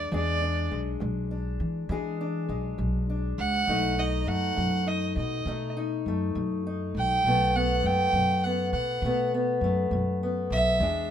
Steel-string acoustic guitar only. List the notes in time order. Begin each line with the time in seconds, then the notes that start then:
0.12 E2 G#3 D4 G#4
0.42 D4
0.72 G#3
1.00 E2
1.31 D4
1.90 E2 G#3 D4 G#4
2.21 D4
2.49 G#3
2.78 E2
3.10 D4
3.68 B2 A3 D#4
3.98 D#4
4.27 A3
4.56 B2
4.87 D#4
5.47 B2 A3 D#4
5.77 D#4
6.08 A3
6.36 B2
6.67 D#4
7.26 B2 A3 B3
7.56 B3
7.85 A3
8.15 B2
8.46 B3
9.04 B2 A3 B3
9.34 B3
9.64 A3
9.93 B2
10.23 B3
10.80 E2 G#3 D4 G#4